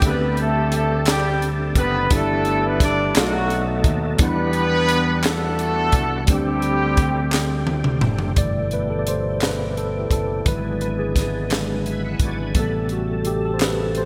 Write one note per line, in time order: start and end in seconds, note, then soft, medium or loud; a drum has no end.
0.00 1.72 D2 medium
0.00 1.02 D3 medium
0.00 2.07 G3 medium
0.00 2.05 A3 medium
0.00 2.07 A3 medium
0.00 2.06 C4 medium
0.00 2.07 C4 medium
0.00 2.07 D4 medium
0.00 2.07 A4 medium
0.00 kick loud
0.00 closed hi-hat medium
0.04 0.36 B3 medium
0.04 2.08 G4 medium
0.04 1.04 G4 medium
0.04 2.08 A4 medium
0.04 0.36 B4 loud
0.37 closed hi-hat soft
0.42 0.74 A3 medium
0.42 0.74 A4 medium
0.72 closed hi-hat medium
0.76 1.06 A3 medium
0.76 1.06 A4 medium
1.05 snare loud
1.05 clap loud
1.05 closed hi-hat medium
1.11 1.49 G3 medium
1.11 1.49 G4 loud
1.42 closed hi-hat medium
1.75 2.08 F#1 medium
1.75 2.10 B3 loud
1.75 2.10 B4 loud
1.75 kick medium
1.75 closed hi-hat medium
2.10 3.11 G1 loud
2.10 3.12 G2 medium
2.10 3.15 E3 medium
2.10 3.15 A3 medium
2.10 3.14 B3 medium
2.10 3.15 D4 medium
2.10 2.83 D4 medium
2.10 3.16 E4 medium
2.10 3.13 E4 medium
2.10 3.15 G4 medium
2.10 3.16 G4 medium
2.10 3.16 A4 medium
2.10 kick loud
2.10 closed hi-hat medium
2.15 2.65 A3 loud
2.15 2.65 A4 loud
2.45 closed hi-hat soft
2.66 2.82 B3 medium
2.66 2.82 B4 medium
2.80 3.14 D4 loud
2.80 3.14 D5 loud
2.80 kick loud
2.80 snare soft
2.80 closed hi-hat medium
3.15 3.81 B1 loud
3.15 4.16 B2 medium
3.15 4.19 F#3 medium
3.15 3.82 F#3 medium
3.15 4.19 A3 medium
3.15 4.20 A3 medium
3.15 4.16 A3 medium
3.15 4.17 B3 medium
3.15 4.19 D#4 medium
3.15 4.20 D#4 medium
3.15 4.16 D#4 medium
3.15 4.20 F#4 medium
3.15 3.82 F#4 loud
3.15 4.20 A4 medium
3.15 4.21 A4 medium
3.15 snare loud
3.15 clap loud
3.15 closed hi-hat medium
3.50 closed hi-hat medium
3.84 4.16 D#2 medium
3.84 kick loud
3.84 closed hi-hat medium
4.17 5.89 E2 loud
4.17 6.24 E3 medium
4.17 5.20 E3 medium
4.17 6.23 G3 medium
4.17 6.24 G3 medium
4.17 6.24 B3 medium
4.17 6.24 D4 medium
4.17 6.24 F#5 medium
4.17 kick loud
4.17 closed hi-hat medium
4.21 5.21 B3 loud
4.21 5.22 D4 medium
4.21 6.25 E4 medium
4.21 5.22 G4 medium
4.21 5.21 B4 loud
4.21 6.26 F#5 medium
4.53 closed hi-hat soft
4.89 closed hi-hat medium
5.23 6.26 A3 loud
5.23 6.25 D4 medium
5.23 6.25 F#4 medium
5.23 6.26 A4 loud
5.23 snare loud
5.23 clap loud
5.23 closed hi-hat medium
5.59 closed hi-hat medium
5.92 6.25 C2 medium
5.92 kick loud
5.92 closed hi-hat medium
6.26 7.98 D2 loud
6.26 8.32 D3 medium
6.26 7.30 D3 medium
6.26 8.32 G3 medium
6.26 8.33 G3 medium
6.26 8.33 A3 medium
6.26 8.33 C4 medium
6.26 8.34 C4 medium
6.26 8.33 G4 medium
6.26 kick loud
6.26 closed hi-hat medium
6.31 7.65 G3 medium
6.31 7.65 C4 medium
6.31 8.35 D4 medium
6.31 7.65 G4 loud
6.31 8.36 G4 medium
6.62 closed hi-hat soft
6.97 kick loud
6.97 closed hi-hat medium
7.32 snare medium
7.32 clap loud
7.67 high tom medium
7.84 mid tom medium
8.01 8.35 F#1 medium
8.01 mid tom loud
8.19 floor tom medium
8.36 10.07 G1 medium
8.36 9.38 B2 medium
8.36 10.42 B2 soft
8.36 9.37 E3 soft
8.36 10.42 E3 medium
8.36 10.44 G3 medium
8.36 10.44 A3 medium
8.36 10.42 A3 soft
8.36 9.38 A3 soft
8.36 12.51 E4 medium
8.36 10.42 G4 medium
8.36 8.74 D5 medium
8.36 kick loud
8.36 closed hi-hat medium
8.71 8.91 B4 medium
8.71 closed hi-hat soft
8.90 9.01 A4 medium
8.99 9.07 D5 medium
9.07 9.44 C5 medium
9.07 closed hi-hat medium
9.41 9.78 B4 medium
9.41 snare medium
9.41 clap medium
9.41 closed hi-hat medium
9.77 10.11 A4 medium
9.77 closed hi-hat soft
10.10 10.43 F#1 medium
10.10 10.45 A4 medium
10.10 kick medium
10.10 closed hi-hat medium
10.44 12.17 G#1 medium
10.44 11.49 D3 medium
10.44 12.51 E3 medium
10.44 11.50 F#3 soft
10.44 12.53 G#3 medium
10.44 11.50 G#3 medium
10.44 12.51 B3 medium
10.44 12.53 D4 medium
10.44 11.83 D4 medium
10.44 11.83 G#4 medium
10.44 10.80 B4 medium
10.44 kick loud
10.44 closed hi-hat medium
10.81 10.99 B4 medium
10.81 closed hi-hat soft
10.99 11.31 G#4 medium
11.16 kick medium
11.16 snare soft
11.16 closed hi-hat medium
11.50 11.82 D3 soft
11.50 11.82 F#3 soft
11.50 11.82 G#3 soft
11.50 snare medium
11.50 clap medium
11.50 closed hi-hat medium
11.86 12.03 B4 soft
11.86 12.03 E5 medium
11.86 12.03 G#5 medium
11.86 closed hi-hat soft
12.04 12.21 G#4 medium
12.04 12.20 E5 medium
12.04 12.20 F#5 medium
12.19 12.52 G#1 medium
12.19 12.38 F#4 medium
12.19 12.38 D5 medium
12.19 12.54 G#5 medium
12.19 kick medium
12.19 closed hi-hat medium
12.42 12.73 D4 soft
12.42 12.73 B4 medium
12.52 14.05 A1 medium
12.52 14.05 C3 medium
12.52 13.02 C3 medium
12.52 14.05 C3 medium
12.52 14.05 G3 medium
12.52 13.02 G3 soft
12.52 14.05 A3 medium
12.52 14.05 A4 medium
12.52 kick loud
12.52 closed hi-hat medium
12.57 13.03 B3 medium
12.57 12.93 A4 medium
12.89 13.08 F#4 medium
12.89 closed hi-hat soft
13.25 13.34 G4 medium
13.25 closed hi-hat medium
13.45 13.55 A4 medium
13.54 13.60 C5 medium
13.59 snare medium
13.59 clap medium
13.59 closed hi-hat medium
13.64 13.98 B4 medium
13.95 14.05 C5 medium
13.95 closed hi-hat soft